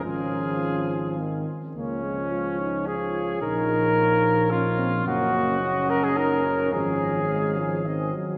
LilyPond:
<<
  \new Staff \with { instrumentName = "Trumpet" } { \time 3/4 \key des \major \tempo 4 = 108 aes'2~ aes'8 r8 | des''2.~ | des''2. | ees''2. |
f''2 ees''8 r8 | }
  \new Staff \with { instrumentName = "Flugelhorn" } { \time 3/4 \key des \major f'2~ f'8 r8 | des'2 aes'4 | bes'2 f'4 | ges'4. bes'16 aes'16 bes'4 |
aes'2~ aes'8 r8 | }
  \new Staff \with { instrumentName = "French horn" } { \time 3/4 \key des \major des'2 c'8 r8 | bes8 aes8 f'8 ees'8 f'4 | ees'2 des'8 c'8 | bes8 bes8 des'4 ees'8 des'8 |
f4 aes8 f8 ees8 ges8 | }
  \new Staff \with { instrumentName = "Trombone" } { \clef bass \time 3/4 \key des \major f2 ees8 r8 | f2. | bes2. | des'2.~ |
des'2 c'8 r8 | }
  \new Staff \with { instrumentName = "Tuba" } { \clef bass \time 3/4 \key des \major aes,,2~ aes,,8 r8 | des,2. | bes,,2. | ges,,2. |
aes,,2~ aes,,8 r8 | }
>>